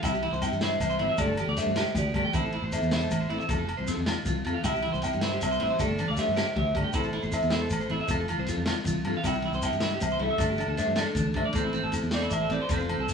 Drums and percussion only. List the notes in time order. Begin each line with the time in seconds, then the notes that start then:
0.03 kick, ride, muted conga, low conga, low agogo, shekere
0.14 shekere
0.23 ride, high conga
0.33 shekere
0.42 ride, low agogo, shekere
0.52 muted conga, high conga, shekere
0.61 snare, ride, low conga
0.80 ride, high conga, low agogo, shekere
0.90 low conga, shekere
0.99 ride, muted conga
1.10 high conga
1.18 kick, ride, low conga, low agogo, shekere
1.37 ride, high conga, low agogo, shekere
1.49 muted conga
1.57 snare, ride, shekere
1.69 high conga
1.76 snare, ride, low conga, low agogo, shekere
1.87 low conga
1.95 kick, ride, muted conga, high conga, shekere
2.14 kick, ride, low agogo
2.25 high conga
2.33 kick, ride, muted conga, low conga, low agogo, shekere
2.52 ride
2.72 ride, low agogo, shekere
2.82 muted conga, high conga, low conga, shekere
2.91 snare, ride, low conga
3.01 low conga, shekere
3.11 ride, high conga, low agogo, shekere
3.29 ride, muted conga
3.40 high conga, low conga, shekere
3.49 kick, ride, low conga, low agogo, shekere
3.68 ride, low conga, low agogo
3.79 muted conga
3.87 snare, ride, shekere
3.98 high conga, low conga
4.06 snare, ride, low conga, low agogo, shekere
4.18 low conga
4.26 kick, ride, muted conga, high conga, shekere
4.45 ride, low agogo, shekere
4.57 high conga
4.64 kick, ride, muted conga, low conga, low agogo, shekere
4.76 shekere
4.82 ride, high conga
4.94 shekere
5.02 ride, low agogo, shekere
5.13 muted conga, high conga, shekere
5.21 snare, ride, low conga
5.41 ride, low agogo, shekere
5.52 shekere
5.60 ride, muted conga
5.71 high conga
5.79 kick, ride, low conga, low agogo, shekere
5.91 low conga
5.99 ride, high conga, low agogo, shekere
6.09 muted conga
6.17 snare, ride, shekere
6.28 high conga
6.35 snare, ride, low conga, low agogo, shekere
6.47 low conga
6.56 kick, ride, muted conga, high conga
6.75 kick, ride, low agogo
6.85 high conga
6.93 kick, ride, muted conga, low conga, low agogo, shekere
7.03 shekere
7.13 ride, high conga
7.23 shekere
7.32 ride, low agogo, shekere
7.42 muted conga, high conga, shekere
7.50 snare, ride, low conga
7.70 ride, high conga, low agogo, shekere
7.81 low conga, shekere
7.90 ride, muted conga
8.00 high conga
8.08 kick, ride, low conga, low agogo, shekere
8.20 low conga
8.28 ride, high conga, low agogo, shekere
8.38 muted conga
8.47 snare, ride, shekere
8.57 high conga
8.66 snare, ride, low conga, low agogo, shekere
8.76 low conga
8.84 kick, ride, muted conga, high conga, shekere
9.05 ride, low agogo
9.14 high conga
9.23 kick, ride, muted conga, low conga, low agogo, shekere
9.33 shekere
9.42 ride, high conga
9.53 shekere
9.62 ride, low agogo, shekere
9.71 high conga, shekere
9.80 snare, ride, low conga
10.00 ride, high conga, low agogo, shekere
10.10 low conga, shekere
10.19 ride, muted conga
10.30 high conga
10.38 kick, ride, low conga, low agogo, shekere
10.58 ride, high conga, low agogo, shekere
10.68 muted conga
10.77 snare, ride, shekere
10.87 high conga
10.96 snare, ride, low conga, low agogo, shekere
11.06 low conga
11.15 kick, ride, muted conga, high conga, shekere
11.34 kick, ride, low agogo
11.45 high conga
11.53 kick, ride, muted conga, low conga, low agogo, shekere
11.73 ride, high conga, shekere
11.92 ride, low agogo, shekere
12.02 muted conga, high conga, shekere
12.11 snare, ride, low conga
12.22 shekere
12.30 ride, high conga, low agogo, shekere
12.41 low conga
12.50 ride, muted conga, shekere
12.61 high conga
12.69 kick, ride, low conga, low agogo, shekere
12.80 shekere
12.89 ride, high conga, low conga, low agogo
12.99 muted conga
13.09 snare, ride, shekere